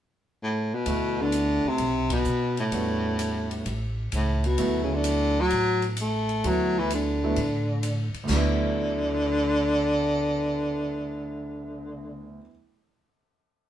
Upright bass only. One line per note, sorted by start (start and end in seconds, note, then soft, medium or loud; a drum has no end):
0.86 1.60 D2 medium
1.64 muted upright bass stroke soft
1.79 2.23 B1 medium
2.26 2.69 B2 medium
2.72 3.61 E2 medium
3.66 4.09 A1 medium
4.13 4.56 C#2 medium
4.58 5.47 D2 medium
5.51 6.40 A1 medium
6.44 7.33 D2 medium
7.37 8.11 A2 medium
8.14 muted upright bass stroke soft
8.29 12.38 D2 medium